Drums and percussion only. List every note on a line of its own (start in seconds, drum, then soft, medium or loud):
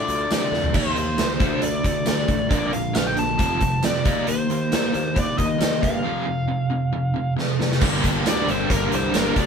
0.08 closed hi-hat medium
0.31 snare loud
0.31 closed hi-hat medium
0.31 tambourine loud
0.53 snare soft
0.64 floor tom medium
0.74 kick medium
0.74 crash loud
0.96 closed hi-hat medium
1.18 snare loud
1.18 closed hi-hat medium
1.18 tambourine loud
1.40 kick loud
1.40 closed hi-hat medium
1.62 closed hi-hat medium
1.84 kick medium
1.84 closed hi-hat medium
2.06 snare loud
2.06 closed hi-hat medium
2.06 tambourine loud
2.28 kick medium
2.28 closed hi-hat medium
2.51 kick loud
2.51 closed hi-hat medium
2.73 closed hi-hat medium
2.95 snare loud
2.95 closed hi-hat medium
2.95 tambourine loud
3.17 closed hi-hat medium
3.39 kick medium
3.39 closed hi-hat medium
3.61 kick medium
3.61 closed hi-hat medium
3.83 snare loud
3.83 closed hi-hat medium
3.83 tambourine loud
4.05 kick loud
4.05 closed hi-hat medium
4.27 closed hi-hat medium
4.50 closed hi-hat medium
4.72 snare loud
4.72 closed hi-hat medium
4.72 tambourine loud
4.94 closed hi-hat medium
5.16 kick medium
5.16 closed hi-hat medium
5.38 kick medium
5.38 closed hi-hat medium
5.61 snare loud
5.61 closed hi-hat medium
5.61 tambourine loud
5.83 kick medium
5.83 closed hi-hat medium
7.39 snare medium
7.61 snare medium
7.72 snare medium
7.81 kick loud
7.81 crash loud
8.04 kick medium
8.04 closed hi-hat medium
8.26 snare loud
8.26 closed hi-hat loud
8.26 tambourine loud
8.49 closed hi-hat medium
8.70 kick medium
8.70 closed hi-hat loud
8.92 closed hi-hat medium
9.14 snare loud
9.14 closed hi-hat loud
9.14 tambourine loud
9.36 kick medium
9.36 closed hi-hat medium